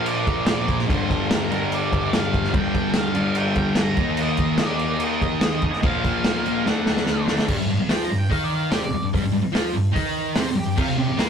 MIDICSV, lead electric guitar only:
0, 0, Header, 1, 2, 480
1, 0, Start_track
1, 0, Tempo, 412371
1, 1041, Time_signature, 4, 2, 24, 8
1, 13146, End_track
2, 0, Start_track
2, 0, Title_t, "Lead electric guitar"
2, 0, Program_c, 0, 29
2, 85, Note_on_c, 0, 74, 99
2, 549, Note_off_c, 0, 74, 0
2, 563, Note_on_c, 0, 74, 92
2, 897, Note_off_c, 0, 74, 0
2, 1070, Note_on_c, 0, 72, 96
2, 1523, Note_on_c, 0, 70, 89
2, 1549, Note_off_c, 0, 72, 0
2, 2016, Note_off_c, 0, 70, 0
2, 2032, Note_on_c, 0, 74, 107
2, 2511, Note_off_c, 0, 74, 0
2, 2518, Note_on_c, 0, 77, 96
2, 2966, Note_off_c, 0, 77, 0
2, 2970, Note_on_c, 0, 79, 98
2, 3460, Note_off_c, 0, 79, 0
2, 3470, Note_on_c, 0, 77, 92
2, 3930, Note_off_c, 0, 77, 0
2, 3935, Note_on_c, 0, 79, 110
2, 4422, Note_off_c, 0, 79, 0
2, 4439, Note_on_c, 0, 82, 109
2, 4911, Note_on_c, 0, 75, 103
2, 4914, Note_off_c, 0, 82, 0
2, 5390, Note_off_c, 0, 75, 0
2, 5413, Note_on_c, 0, 74, 94
2, 5869, Note_off_c, 0, 74, 0
2, 5874, Note_on_c, 0, 75, 113
2, 6824, Note_on_c, 0, 77, 102
2, 6845, Note_off_c, 0, 75, 0
2, 7780, Note_off_c, 0, 77, 0
2, 7785, Note_on_c, 0, 78, 104
2, 8445, Note_off_c, 0, 78, 0
2, 9213, Note_on_c, 0, 79, 81
2, 9360, Note_off_c, 0, 79, 0
2, 9365, Note_on_c, 0, 82, 78
2, 9517, Note_off_c, 0, 82, 0
2, 9522, Note_on_c, 0, 79, 102
2, 9674, Note_on_c, 0, 77, 85
2, 9676, Note_off_c, 0, 79, 0
2, 9825, Note_off_c, 0, 77, 0
2, 9825, Note_on_c, 0, 74, 88
2, 9952, Note_off_c, 0, 74, 0
2, 9956, Note_on_c, 0, 77, 90
2, 10133, Note_off_c, 0, 77, 0
2, 10164, Note_on_c, 0, 74, 79
2, 10280, Note_off_c, 0, 74, 0
2, 10293, Note_on_c, 0, 74, 104
2, 10539, Note_off_c, 0, 74, 0
2, 12087, Note_on_c, 0, 72, 106
2, 12296, Note_on_c, 0, 67, 98
2, 12316, Note_off_c, 0, 72, 0
2, 12540, Note_off_c, 0, 67, 0
2, 12567, Note_on_c, 0, 65, 89
2, 12779, Note_off_c, 0, 65, 0
2, 12784, Note_on_c, 0, 67, 81
2, 13023, Note_off_c, 0, 67, 0
2, 13028, Note_on_c, 0, 72, 101
2, 13146, Note_off_c, 0, 72, 0
2, 13146, End_track
0, 0, End_of_file